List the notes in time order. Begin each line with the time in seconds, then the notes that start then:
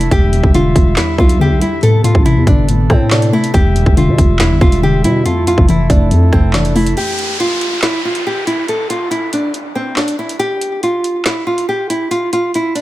Already playing: F2 E3 A3
0.01 closed hi-hat
0.11 E1 E2 D3 G3 G4 E5, kick, closed hi-hat
0.33 E2, closed hi-hat
0.44 E1, kick
0.54 D3 F4, closed hi-hat
0.76 E1 E2, kick, closed hi-hat
0.96 E2 E4, snare, clap, closed hi-hat
1.18 B1 E2 F4, kick
1.29 closed hi-hat
1.40 E2 D3 G4
1.51 B1
1.61 G3 E4, closed hi-hat
1.83 A2 C3 B3 A4, closed hi-hat
2.04 A2 F4, closed hi-hat
2.15 A1, kick
2.25 C3 E4, closed hi-hat
2.36 E2
2.47 G1 A2 D4, kick, closed hi-hat
2.68 A2, closed hi-hat
2.90 A2 C4, kick, cross-stick
3.10 C3 D4, snare, clap
3.22 closed hi-hat
3.33 A3 E4
3.44 closed hi-hat
3.54 E1 E2 D3 G3 G4 E5, kick, closed hi-hat
3.76 E2, closed hi-hat
3.86 E1, kick
3.97 D3 F4, closed hi-hat
4.08 B2
4.18 E1 E2, kick, closed hi-hat
4.39 E2 E4, snare, clap, closed hi-hat
4.51 G1
4.61 E1 E2 F4, kick
4.72 closed hi-hat
4.82 D3 G4
5.04 B2 G3 E4, closed hi-hat
5.25 F2 A3 E4 F4 A4, closed hi-hat
5.47 F2 F4, closed hi-hat
5.58 F1, kick
5.69 E3 E4, closed hi-hat
5.90 F1 F2 D4, kick, closed hi-hat
6.11 F2, closed hi-hat
6.33 F1 F2 C4, kick, cross-stick
6.53 E3 D4, snare, clap
6.65 closed hi-hat
6.75 A3 E4, open hi-hat
6.86 closed hi-hat
6.97 G4, closed hi-hat, downlifter
7.18 closed hi-hat
7.40 F4, closed hi-hat
7.61 closed hi-hat
7.82 E4, snare, clap, closed hi-hat
8.05 F4
8.15 closed hi-hat
8.27 G4
8.47 E4, closed hi-hat
8.68 A4, closed hi-hat
8.90 F4, closed hi-hat
9.11 E4, closed hi-hat
9.33 D4, closed hi-hat
9.54 closed hi-hat
9.75 C4
9.96 D4, snare, clap
10.08 closed hi-hat
10.19 E4
10.29 closed hi-hat
10.39 G4, closed hi-hat
10.61 closed hi-hat
10.83 F4, closed hi-hat
11.04 closed hi-hat
11.25 E4, snare, clap, closed hi-hat
11.47 F4
11.58 closed hi-hat
11.69 G4
11.90 E4, closed hi-hat
12.11 F4, closed hi-hat
12.33 F4, closed hi-hat
12.54 E4, closed hi-hat
12.75 D4, closed hi-hat